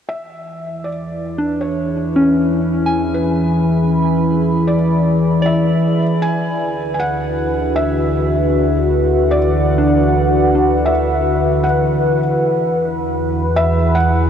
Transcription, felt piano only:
0.08 0.89 E5 medium
0.84 1.65 D5 medium
1.61 3.21 C#5 medium
3.14 4.75 B4 medium
4.68 5.49 D5 medium
5.46 6.01 E5 medium
6.22 6.93 G#5 medium
6.94 7.02 G#5 medium
7.00 7.74 F#5 medium
7.76 9.36 E5 medium
9.31 10.91 D5 medium
10.86 11.66 E5 medium
11.64 12.18 F#5 medium
13.56 13.96 E5 medium
13.95 14.30 F#5 medium

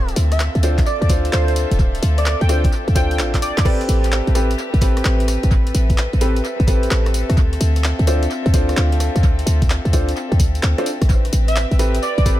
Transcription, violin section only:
0.00 3.61 C4 medium
0.00 3.62 F4 medium
0.00 3.62 A4 medium
0.00 3.62 E5 medium
3.65 12.40 C4 medium
3.65 5.50 G4 medium
3.65 7.34 B4 medium
3.65 11.06 E5 medium
5.51 11.05 A4 medium
7.37 11.06 F4 medium
11.09 12.40 G4 medium
11.09 12.40 B4 medium
11.09 12.40 E5 medium

